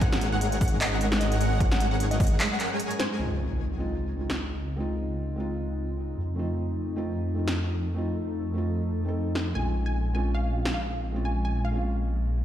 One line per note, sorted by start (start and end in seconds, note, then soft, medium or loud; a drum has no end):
0.00 2.40 G#1 medium
0.00 3.16 F#3 medium
0.00 3.15 G#3 medium
0.00 1.38 G#3 medium
0.00 3.15 C#4 medium
0.00 1.38 G#4 medium
0.00 1.38 A#4 medium
0.00 1.38 C#5 medium
0.00 0.24 F#5 loud
0.00 1.38 F#5 loud
0.00 kick loud
0.00 closed hi-hat medium
0.13 snare medium
0.21 closed hi-hat medium
0.32 0.54 F#5 medium
0.41 closed hi-hat medium
0.52 closed hi-hat medium
0.61 0.76 F#5 medium
0.61 kick loud
0.61 closed hi-hat medium
0.61 open hi-hat medium
0.68 closed hi-hat medium
0.81 1.11 D#5 loud
0.81 clap loud
0.81 closed hi-hat medium
1.01 closed hi-hat medium
1.12 snare medium
1.21 1.36 D#5 loud
1.21 closed hi-hat medium
1.32 closed hi-hat medium
1.41 1.58 G#3 medium
1.41 1.58 G#4 medium
1.41 1.58 A#4 medium
1.41 1.58 C#5 medium
1.41 1.58 F#5 medium
1.41 closed hi-hat medium
1.60 2.69 G#3 medium
1.60 2.69 A#4 medium
1.60 2.69 C#5 medium
1.60 2.69 F#5 loud
1.60 kick loud
1.60 closed hi-hat medium
1.71 1.86 F#5 medium
1.71 snare medium
1.80 closed hi-hat medium
1.91 2.05 F#5 medium
2.00 closed hi-hat medium
2.11 2.33 D#5 loud
2.11 closed hi-hat medium
2.20 kick loud
2.20 closed hi-hat medium
2.20 open hi-hat loud
2.27 closed hi-hat medium
2.40 clap loud
2.40 closed hi-hat medium
2.60 clap soft
2.60 closed hi-hat medium
2.71 3.17 G#3 medium
2.71 3.17 G#4 medium
2.71 3.17 A#4 medium
2.71 3.17 C#5 medium
2.71 3.17 G#5 medium
2.80 closed hi-hat medium
2.91 closed hi-hat medium
3.00 3.15 C5 loud
3.00 snare medium
3.00 closed hi-hat medium
3.17 6.16 C#2 medium
3.17 6.14 C#3 medium
3.17 3.76 G#3 medium
3.17 3.77 C4 medium
3.17 9.51 C4 medium
3.17 9.51 D#4 medium
3.17 3.77 D#4 medium
3.17 6.14 F4 medium
3.17 3.78 F4 medium
3.17 impact medium
3.78 4.15 G#3 medium
3.78 4.16 C4 medium
3.78 4.17 D#4 medium
3.78 4.17 F4 loud
4.17 4.75 G#3 medium
4.17 4.76 C4 medium
4.17 4.77 D#4 medium
4.21 4.77 F4 medium
4.30 snare medium
4.76 5.34 G#3 medium
4.76 5.35 C4 medium
4.76 5.36 D#4 medium
4.80 5.37 F4 loud
5.36 6.15 G#3 medium
5.36 6.16 C4 medium
5.36 6.17 D#4 medium
5.36 6.17 F4 medium
6.17 9.53 F2 medium
6.17 9.52 F3 medium
6.17 9.52 A4 medium
6.35 6.94 A3 medium
6.35 6.94 C4 medium
6.35 6.95 D#4 medium
6.35 6.96 F4 medium
6.96 7.33 A3 medium
6.96 7.34 C4 medium
6.96 7.35 D#4 medium
6.96 7.35 F4 loud
7.35 7.93 A3 medium
7.35 7.94 C4 medium
7.35 7.94 D#4 medium
7.39 7.95 F4 medium
7.48 snare medium
7.94 8.52 A3 medium
7.94 8.53 C4 medium
7.94 8.54 D#4 medium
7.98 8.55 F4 loud
8.54 9.03 A3 medium
8.54 9.04 C4 medium
8.54 9.05 D#4 medium
8.58 9.05 F4 loud
9.04 9.52 A3 medium
9.04 9.53 C4 medium
9.04 9.53 D#4 medium
9.09 9.54 A4 medium
9.35 snare medium
9.53 12.45 A#1 medium
9.53 10.12 G#3 medium
9.53 12.45 G#3 medium
9.53 12.45 A#3 medium
9.53 10.12 C4 medium
9.53 10.13 C#4 medium
9.53 10.14 F4 medium
9.53 9.77 G#5 loud
9.86 10.08 G#5 medium
10.14 10.51 G#3 loud
10.14 10.52 C4 medium
10.14 10.53 C#4 medium
10.14 10.53 F4 loud
10.14 10.30 G#5 medium
10.35 10.65 F5 medium
10.52 11.11 G#3 medium
10.52 11.12 C4 medium
10.52 11.12 C#4 medium
10.56 11.13 F4 medium
10.65 snare medium
10.74 10.90 F5 medium
11.12 11.70 G#3 medium
11.12 11.71 C4 medium
11.12 11.72 C#4 medium
11.16 11.73 F4 loud
11.25 11.39 G#5 medium
11.45 11.59 G#5 medium
11.65 11.87 F5 medium
11.72 12.45 G#3 medium
11.72 12.45 C4 medium
11.72 12.45 C#4 medium
11.72 12.45 F4 loud